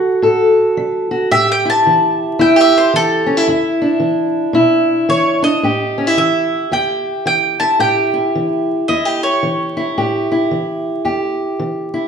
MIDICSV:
0, 0, Header, 1, 3, 480
1, 0, Start_track
1, 0, Tempo, 541028
1, 1163, Time_signature, 4, 2, 24, 8
1, 10716, End_track
2, 0, Start_track
2, 0, Title_t, "Mandolin"
2, 0, Program_c, 0, 25
2, 0, Note_on_c, 0, 78, 98
2, 655, Note_off_c, 0, 78, 0
2, 1166, Note_on_c, 0, 76, 96
2, 1320, Note_off_c, 0, 76, 0
2, 1345, Note_on_c, 0, 79, 99
2, 1490, Note_off_c, 0, 79, 0
2, 1505, Note_on_c, 0, 81, 96
2, 2115, Note_off_c, 0, 81, 0
2, 2139, Note_on_c, 0, 79, 73
2, 2286, Note_off_c, 0, 79, 0
2, 2312, Note_on_c, 0, 76, 95
2, 2453, Note_off_c, 0, 76, 0
2, 2462, Note_on_c, 0, 72, 81
2, 2607, Note_off_c, 0, 72, 0
2, 2625, Note_on_c, 0, 69, 108
2, 3079, Note_off_c, 0, 69, 0
2, 4521, Note_on_c, 0, 73, 84
2, 4821, Note_off_c, 0, 73, 0
2, 4824, Note_on_c, 0, 75, 88
2, 5479, Note_off_c, 0, 75, 0
2, 5483, Note_on_c, 0, 76, 83
2, 5928, Note_off_c, 0, 76, 0
2, 5970, Note_on_c, 0, 79, 76
2, 6438, Note_off_c, 0, 79, 0
2, 6448, Note_on_c, 0, 79, 93
2, 6737, Note_off_c, 0, 79, 0
2, 6741, Note_on_c, 0, 81, 87
2, 6919, Note_off_c, 0, 81, 0
2, 6923, Note_on_c, 0, 79, 91
2, 7880, Note_on_c, 0, 75, 76
2, 7912, Note_off_c, 0, 79, 0
2, 8186, Note_off_c, 0, 75, 0
2, 8192, Note_on_c, 0, 73, 71
2, 9110, Note_off_c, 0, 73, 0
2, 10716, End_track
3, 0, Start_track
3, 0, Title_t, "Steel-string acoustic guitar"
3, 0, Program_c, 1, 25
3, 0, Note_on_c, 1, 54, 57
3, 0, Note_on_c, 1, 66, 66
3, 0, Note_on_c, 1, 69, 70
3, 165, Note_off_c, 1, 54, 0
3, 199, Note_on_c, 1, 45, 69
3, 203, Note_off_c, 1, 69, 0
3, 206, Note_on_c, 1, 69, 69
3, 645, Note_off_c, 1, 45, 0
3, 685, Note_on_c, 1, 54, 62
3, 973, Note_off_c, 1, 66, 0
3, 984, Note_on_c, 1, 66, 63
3, 1127, Note_off_c, 1, 54, 0
3, 1141, Note_off_c, 1, 69, 0
3, 1144, Note_off_c, 1, 66, 0
3, 1164, Note_on_c, 1, 45, 80
3, 1168, Note_on_c, 1, 67, 72
3, 1466, Note_on_c, 1, 64, 59
3, 1607, Note_off_c, 1, 45, 0
3, 1655, Note_on_c, 1, 52, 60
3, 2092, Note_off_c, 1, 52, 0
3, 2119, Note_off_c, 1, 67, 0
3, 2122, Note_on_c, 1, 40, 65
3, 2123, Note_off_c, 1, 64, 0
3, 2123, Note_on_c, 1, 64, 71
3, 2272, Note_off_c, 1, 64, 0
3, 2272, Note_on_c, 1, 67, 55
3, 2565, Note_off_c, 1, 40, 0
3, 2604, Note_on_c, 1, 52, 69
3, 2896, Note_on_c, 1, 61, 60
3, 2990, Note_off_c, 1, 61, 0
3, 2990, Note_on_c, 1, 64, 55
3, 3046, Note_off_c, 1, 52, 0
3, 3077, Note_off_c, 1, 64, 0
3, 3082, Note_off_c, 1, 67, 0
3, 3083, Note_on_c, 1, 40, 77
3, 3089, Note_on_c, 1, 64, 70
3, 3386, Note_on_c, 1, 62, 57
3, 3526, Note_off_c, 1, 40, 0
3, 3546, Note_on_c, 1, 52, 57
3, 3996, Note_off_c, 1, 52, 0
3, 4020, Note_on_c, 1, 47, 72
3, 4022, Note_off_c, 1, 64, 0
3, 4033, Note_on_c, 1, 64, 78
3, 4473, Note_off_c, 1, 47, 0
3, 4514, Note_on_c, 1, 52, 64
3, 4801, Note_off_c, 1, 62, 0
3, 4812, Note_on_c, 1, 62, 59
3, 4960, Note_off_c, 1, 52, 0
3, 4976, Note_off_c, 1, 62, 0
3, 4998, Note_on_c, 1, 45, 78
3, 5003, Note_off_c, 1, 64, 0
3, 5007, Note_on_c, 1, 67, 68
3, 5304, Note_on_c, 1, 61, 52
3, 5385, Note_off_c, 1, 61, 0
3, 5385, Note_on_c, 1, 64, 49
3, 5442, Note_off_c, 1, 45, 0
3, 5476, Note_on_c, 1, 52, 52
3, 5921, Note_off_c, 1, 52, 0
3, 5957, Note_on_c, 1, 40, 65
3, 5958, Note_off_c, 1, 67, 0
3, 5962, Note_on_c, 1, 67, 66
3, 6402, Note_off_c, 1, 40, 0
3, 6438, Note_on_c, 1, 52, 62
3, 6735, Note_off_c, 1, 64, 0
3, 6745, Note_on_c, 1, 64, 55
3, 6883, Note_off_c, 1, 52, 0
3, 6915, Note_off_c, 1, 67, 0
3, 6915, Note_on_c, 1, 45, 74
3, 6919, Note_on_c, 1, 67, 67
3, 7215, Note_off_c, 1, 64, 0
3, 7218, Note_on_c, 1, 64, 55
3, 7362, Note_off_c, 1, 45, 0
3, 7411, Note_on_c, 1, 52, 57
3, 7850, Note_off_c, 1, 52, 0
3, 7881, Note_off_c, 1, 67, 0
3, 7885, Note_off_c, 1, 64, 0
3, 7885, Note_on_c, 1, 64, 63
3, 7889, Note_on_c, 1, 40, 64
3, 8031, Note_off_c, 1, 64, 0
3, 8031, Note_on_c, 1, 67, 54
3, 8329, Note_off_c, 1, 40, 0
3, 8364, Note_on_c, 1, 52, 59
3, 8666, Note_on_c, 1, 64, 59
3, 8807, Note_off_c, 1, 52, 0
3, 8840, Note_off_c, 1, 67, 0
3, 8851, Note_on_c, 1, 45, 81
3, 8852, Note_on_c, 1, 67, 63
3, 9148, Note_off_c, 1, 64, 0
3, 9152, Note_on_c, 1, 64, 60
3, 9290, Note_off_c, 1, 45, 0
3, 9326, Note_on_c, 1, 52, 61
3, 9768, Note_off_c, 1, 52, 0
3, 9800, Note_on_c, 1, 40, 62
3, 9801, Note_off_c, 1, 67, 0
3, 9804, Note_on_c, 1, 67, 62
3, 10245, Note_off_c, 1, 40, 0
3, 10287, Note_on_c, 1, 52, 59
3, 10579, Note_off_c, 1, 64, 0
3, 10590, Note_on_c, 1, 64, 54
3, 10716, Note_off_c, 1, 52, 0
3, 10716, Note_off_c, 1, 64, 0
3, 10716, Note_off_c, 1, 67, 0
3, 10716, End_track
0, 0, End_of_file